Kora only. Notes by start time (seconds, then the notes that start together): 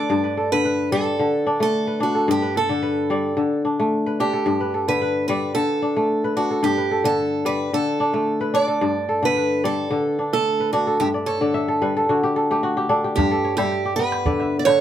Already playing: D3 A3 D4 A4 B4
0.10 G2
0.24 B4
0.37 A4
0.52 D3
0.65 B4
0.92 G3 D5
1.19 D3
1.47 D4
1.60 A3
1.87 B4
2.00 D4
2.15 A4
2.28 G2
2.42 B4
2.56 A4
2.69 D3
2.82 B4
3.10 G3 D5
3.37 D3
3.65 D4
3.80 A3
4.06 B4
4.20 D4
4.33 A4
4.46 G2
4.60 B4
4.74 A4
4.88 D3
5.01 B4
5.29 G3 D5
5.55 D3
5.82 D4
5.96 A3
6.24 B4
6.37 D4
6.51 A4
6.63 G2
6.77 B4
6.91 A4
7.04 D3
7.45 G3 D5
7.73 D3
8.00 D4
8.14 A3
8.41 B4
8.54 D4
8.68 A4
8.81 G2
9.09 A4
9.23 D3
9.37 B4
9.64 G3 D5
9.91 D3
10.19 D4
10.33 A3
10.60 B4
10.73 D4
10.87 A4
11.00 G2 E5
11.14 D5
11.27 C#5
11.41 D3 D5
11.54 E5
11.68 A4
11.82 G3 B4
11.97 A4
12.09 D3 F#4
12.23 G4
12.36 A4
12.51 A3 G4
12.63 F#4
12.77 G4
12.89 D4 A4
13.04 G4
13.18 G2
13.31 A4
13.44 C#5
13.58 G3 E5
13.85 G4
13.99 B3
14.26 D3 D5
14.40 E5
14.67 D3